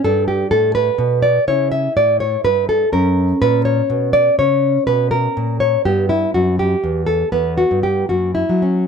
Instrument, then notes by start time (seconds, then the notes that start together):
nylon-string guitar
0.04 G2 D4 A4
0.28 G4
0.51 A2 A4
0.75 B4
0.98 B2
1.22 D5
1.48 C#3 E4 C#5
1.72 E5
1.97 A2 D5
2.20 C#5
2.44 G2 B4
2.69 A4
2.92 F#2 C#4 A#4
3.42 A#2 B4
3.65 C#5
3.90 B2
4.13 D5
4.39 C#3 C#5
4.87 B2 B4
5.11 A#4
5.37 A#2
5.60 C#5
5.85 G2 B3 G4
6.09 E4
6.34 F#2 F#4
6.59 G4
6.84 E2
7.07 A4
7.32 E2 B3 B4
7.58 F#4
7.71 G2
7.83 G4
8.09 F#2 A#3 F#4
8.35 E4
8.49 F#3
8.62 C#4